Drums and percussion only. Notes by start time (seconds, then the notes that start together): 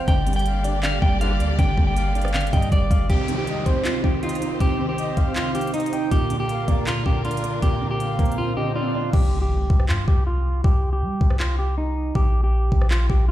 0.08 kick, closed hi-hat
0.27 closed hi-hat, open hi-hat
0.33 closed hi-hat
0.39 closed hi-hat
0.46 closed hi-hat
0.64 closed hi-hat
0.83 clap, closed hi-hat
1.02 kick
1.21 closed hi-hat
1.40 closed hi-hat
1.59 kick, closed hi-hat
1.78 kick
1.97 closed hi-hat
2.15 closed hi-hat
2.22 cross-stick, closed hi-hat
2.28 closed hi-hat
2.34 clap, closed hi-hat
2.40 closed hi-hat
2.47 closed hi-hat
2.53 kick, closed hi-hat
2.62 closed hi-hat
2.72 kick, closed hi-hat
2.91 kick, closed hi-hat
3.10 kick, closed hi-hat
3.28 closed hi-hat
3.47 closed hi-hat
3.66 kick, closed hi-hat
3.85 clap, closed hi-hat
4.04 kick
4.23 closed hi-hat
4.29 closed hi-hat
4.35 closed hi-hat
4.42 closed hi-hat
4.60 kick, closed hi-hat
4.98 closed hi-hat
5.17 kick, closed hi-hat
5.36 clap, closed hi-hat
5.55 closed hi-hat
5.61 closed hi-hat
5.67 closed hi-hat
5.74 closed hi-hat
5.80 closed hi-hat
5.86 closed hi-hat
5.93 closed hi-hat
6.11 kick, closed hi-hat
6.30 closed hi-hat
6.49 closed hi-hat
6.68 kick, closed hi-hat
6.87 clap, closed hi-hat
7.06 kick
7.25 closed hi-hat
7.31 closed hi-hat
7.37 closed hi-hat
7.44 closed hi-hat
7.62 kick, closed hi-hat
8.00 closed hi-hat
8.19 kick, closed hi-hat
8.25 closed hi-hat
8.32 closed hi-hat
9.13 kick, crash
9.70 kick
9.80 cross-stick
9.89 clap
10.08 kick
10.64 kick
11.21 kick
11.30 cross-stick
11.40 clap
12.15 kick
12.72 kick
12.81 cross-stick
12.91 clap
13.10 kick